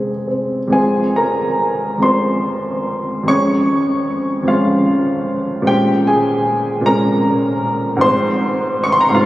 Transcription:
Already playing: F2 C3 G#3 C4 G#4 F5
0.27 C4
0.68 F2 G#3
0.72 C4 F4 G#4 G#5
1.16 A#4 A#5
1.98 F2 G#3
2.02 C4 F4 C5 C6
3.23 F2 F3 G#3
3.28 C#4 C#5 C#6
4.43 F2 F3 G#3
4.48 C#4 F4 F5
5.62 A#2 F3 G#3
5.67 C#4 G4 G5
6.07 G#4 G#5
6.81 A#2 F3
6.85 G#3 C#4 A#4 A#5
7.97 G#2 F3 G#3
8.01 C4 C5 C6
8.84 C#6
8.92 C6
9.01 A#5
9.09 G#2 F3 C6
9.13 G#3 C4 F4 F5

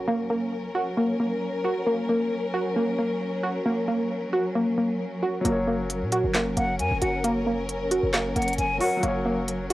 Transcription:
Already playing: F#3 C#4 F#4 A#4
0.08 A#3
0.30 A#3
0.75 F#4
0.97 A#3
1.20 A#3
1.65 F#4
1.87 A#3
2.09 A#3
2.54 F#4
2.76 A#3
2.99 A#3
3.43 F#4
3.66 A#3
3.88 A#3
4.33 F#4
4.55 A#3
4.78 A#3
5.23 F#4
5.41 F#1 F#3 F#4
5.45 A#3 C#4 A#4, closed hi-hat
5.52 C#5
5.67 A#3
5.90 closed hi-hat
6.02 A#2
6.12 F#4, closed hi-hat
6.24 F#1
6.34 A#3, snare, clap, closed hi-hat
6.46 F1
6.57 F#1 A#3 F#5, closed hi-hat
6.79 F#2 G#5, closed hi-hat
6.91 F#1
7.02 F#1 F#4 F#5, closed hi-hat
7.24 A#3, closed hi-hat
7.47 A#3
7.69 closed hi-hat
7.91 F#4, closed hi-hat
8.03 F#1
8.13 A#3, snare, clap, closed hi-hat
8.36 F#1 A#3 F#5, closed hi-hat
8.42 closed hi-hat
8.48 closed hi-hat
8.53 closed hi-hat
8.58 F#1 G#5, closed hi-hat
8.78 F#3 F#4 A#4 F#5, open hi-hat
8.84 C#5
8.97 F#3 F#4
9.03 F#1 F#3 A#3 A#4, closed hi-hat
9.08 C#5
9.26 A#3
9.48 closed hi-hat

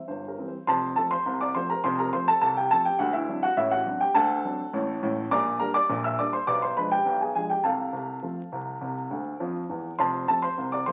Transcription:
0.08 G1 G2 C5
0.28 A#4
0.38 E3 G3 C4
0.48 C5
0.67 F1 F2 C5 A5 C6
0.96 F3 A3 C4 A4 A5
1.11 C5 C6
1.26 C2 C3
1.41 D5 D6
1.54 F3 A3 C4 C5 C6
1.70 A#4 A#5
1.84 F1 F2 C5 C6
1.99 A#4 A#5
2.13 F3 A3 C4 C5 C6
2.28 A4 A5
2.41 C2 C3 A4 A5
2.57 G4 G5
2.71 F3 A3 C4 A4 A5
2.85 G4 G5
2.99 D2 D3 F#4 F#5
3.13 E4 E5
3.28 F#3 C4 D4
3.43 F#4 F#5
3.57 A1 A2 E4 E5
3.71 F#4 F#5
3.86 F#3 C4 D4
4.01 G4 G5
4.15 D2 D3 A4 F#5 A5
4.45 F#3 C4 D4
4.73 A1 A2
5.03 A1 A2
5.31 A#1 A#2 D5 A#5 D6
5.59 G3 A#3 D4 A#4 A#5
5.74 D5 D6
5.89 A#1 A#2
6.04 E5 E6
6.19 G3 A#3 D4 D5 D6
6.33 C5 C6
6.47 B1 B2 D5 D6
6.62 C5 C6
6.77 F3 G#3 D4 B4 B5
6.91 G4 G5
7.06 B1 B2
7.21 G#4 G#5
7.35 F3 G#3 D4 G#4 G#5
7.50 G4 G5
7.64 C2 C3 A4 F5 A5
7.93 C2 C3
8.22 F3 A3 C4
8.52 C2 C3
8.81 C2 C3
9.11 D2 D3
9.40 F2 F3
9.69 E2 E3
9.98 F1 F2 C5 A5 C6
10.28 F3 A3 C4 A4 A5
10.42 C5 C6
10.57 C2 C3
10.72 D5 D6
10.86 F3 A3 C4 C5 C6

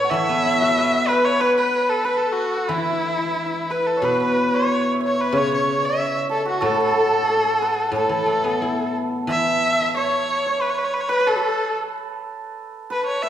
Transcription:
Already playing: A2 A4 B4 C#5
0.04 F#5
0.10 E3 E5
0.14 E5
0.29 B3
0.46 E4
0.62 F#4
0.78 B4
1.08 B4
1.24 C#5
1.40 B4
1.57 B4
1.89 A4
2.04 B4
2.16 A4
2.22 A4
2.32 F#4
2.68 E3 E4
2.72 E4
2.77 E4
2.85 E4
2.92 E4
3.02 E4
3.10 E4
3.17 E4
3.23 E4
3.31 E4
3.37 E4
3.45 E4
3.54 E4
3.70 B4
3.87 A4
3.97 C#5
4.02 B2 B4
4.20 B4
4.54 C#5
4.94 E5
5.00 C#5
5.07 C#5
5.18 B4
5.32 C#3 C#5
5.37 C#5
5.54 C#5
5.85 E5
6.29 A4
6.42 F#4 A4
6.46 F#4
6.61 A2 A4
6.65 A4
6.74 A4
6.80 A4
6.89 A4
6.97 A4
7.07 A4
7.14 A4
7.23 A4
7.30 A4
7.37 A4
7.45 A4
7.62 B4
7.92 A2
7.96 A4
8.09 E3
8.26 A3
8.44 B3
8.62 E4
9.27 E3 E5
9.80 E5
9.97 C#5
10.46 C#5
10.61 B4
10.69 C#5
10.78 B4
10.84 C#5
10.93 B4
11.00 C#5
11.09 B4
11.20 B4
11.27 A4
11.36 F#4
11.42 A4
12.90 B4
13.06 C#5
13.21 E5

